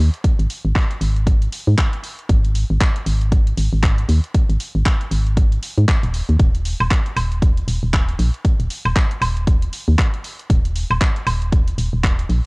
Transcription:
0.14 closed hi-hat
0.24 kick, closed hi-hat
0.39 G#1, closed hi-hat
0.50 open hi-hat
0.65 G#1
0.75 kick, clap, closed hi-hat
0.91 closed hi-hat
1.01 G#1, open hi-hat
1.16 closed hi-hat
1.27 kick, closed hi-hat
1.42 closed hi-hat
1.52 open hi-hat
1.67 G#2
1.78 kick, clap, closed hi-hat
1.93 closed hi-hat
2.04 open hi-hat
2.19 closed hi-hat
2.29 G#1, kick, closed hi-hat
2.44 closed hi-hat
2.55 open hi-hat
2.70 G#1
2.81 kick, clap, closed hi-hat
2.96 closed hi-hat
3.06 G#1, open hi-hat
3.21 closed hi-hat
3.32 kick, closed hi-hat
3.47 closed hi-hat
3.57 G#1, open hi-hat
3.73 G#1
3.83 kick, clap, closed hi-hat
3.98 closed hi-hat
4.09 D#2, open hi-hat
4.24 closed hi-hat
4.34 kick, closed hi-hat
4.49 G#1, closed hi-hat
4.60 open hi-hat
4.75 G#1
4.86 kick, clap, closed hi-hat
5.01 closed hi-hat
5.11 G#1, open hi-hat
5.27 closed hi-hat
5.37 kick, closed hi-hat
5.52 closed hi-hat
5.63 open hi-hat
5.78 G#2, closed hi-hat
5.88 kick, clap, closed hi-hat
6.03 D#1, closed hi-hat
6.14 open hi-hat
6.29 D#2, closed hi-hat
6.39 D#1, kick, closed hi-hat
6.55 closed hi-hat
6.65 open hi-hat
6.80 D#1, high woodblock
6.91 kick, clap, closed hi-hat
7.06 closed hi-hat
7.16 D#1, open hi-hat, high woodblock
7.32 closed hi-hat
7.42 kick, closed hi-hat
7.57 closed hi-hat
7.68 D#1, open hi-hat
7.83 D#1
7.93 kick, clap, closed hi-hat
8.09 closed hi-hat
8.19 A#1, open hi-hat
8.34 closed hi-hat
8.45 kick, closed hi-hat
8.60 D#1, closed hi-hat
8.70 open hi-hat
8.85 D#1, high woodblock
8.96 kick, clap, closed hi-hat
9.11 closed hi-hat
9.21 D#1, open hi-hat, high woodblock
9.37 closed hi-hat
9.47 kick, closed hi-hat
9.62 closed hi-hat
9.73 open hi-hat
9.88 D#2
9.99 kick, clap, closed hi-hat
10.14 closed hi-hat
10.24 open hi-hat
10.39 closed hi-hat
10.50 D#1, kick, closed hi-hat
10.65 closed hi-hat
10.76 open hi-hat
10.90 D#1, high woodblock
11.01 kick, clap, closed hi-hat
11.16 closed hi-hat
11.27 D#1, open hi-hat, high woodblock
11.42 closed hi-hat
11.52 kick, closed hi-hat
11.68 closed hi-hat
11.78 D#1, open hi-hat
11.93 D#1
12.04 kick, clap, closed hi-hat
12.19 closed hi-hat
12.29 A#1, open hi-hat

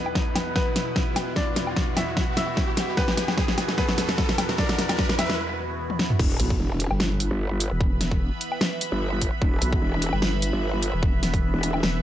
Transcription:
Already playing: E2 B2 B3 E4 F#4 B4 B5, riser
0.06 low woodblock
0.15 kick, snare
0.36 snare, closed hi-hat, low woodblock
0.56 B3 B4, kick, snare
0.76 snare, closed hi-hat
0.96 kick, snare
1.16 snare, closed hi-hat, low woodblock
1.36 D4 D5, kick, snare
1.56 snare, closed hi-hat
1.67 low woodblock
1.76 kick, snare
1.97 E4 E5, snare, closed hi-hat, low woodblock
2.17 kick, snare
2.37 E4 E5, snare, closed hi-hat
2.57 kick, snare
2.77 snare, closed hi-hat
2.97 B3 B4, kick, snare
3.08 snare
3.17 snare, closed hi-hat
3.28 snare, low woodblock
3.38 kick, snare
3.48 snare
3.58 snare, closed hi-hat, low woodblock
3.69 snare
3.78 B3 B4, kick, snare
3.89 snare
3.98 snare, closed hi-hat
4.09 snare
4.18 kick, snare
4.29 snare
4.38 snare, closed hi-hat, low woodblock
4.49 snare
4.58 D4 D5, kick, snare
4.69 snare
4.79 snare, closed hi-hat
4.89 snare, closed hi-hat, low woodblock
4.99 kick, snare
5.09 snare
5.19 E4 E5, snare, closed hi-hat, low woodblock
5.30 snare
5.90 high tom
5.99 snare
6.10 mid tom
6.19 E1 E3 B3 B4 E5 B5, kick, crash, impact
6.40 B1, closed hi-hat
6.50 kick
6.60 E1
6.80 closed hi-hat
6.91 G1, low woodblock
7.00 snare
7.20 closed hi-hat
7.31 G1
7.60 closed hi-hat
7.71 E1
7.81 kick
8.01 snare, closed hi-hat
8.11 kick
8.41 closed hi-hat
8.52 low woodblock
8.61 snare
8.81 closed hi-hat
8.92 G1
9.21 kick, closed hi-hat
9.42 E1, kick
9.62 B1, closed hi-hat
9.72 kick
9.82 E1
10.02 closed hi-hat
10.13 G1, low woodblock
10.22 snare
10.42 closed hi-hat
10.53 G1
10.82 closed hi-hat
10.93 E1
11.03 kick
11.23 snare, closed hi-hat
11.34 kick, closed hi-hat
11.54 E1
11.63 closed hi-hat
11.74 low woodblock
11.83 E1, snare

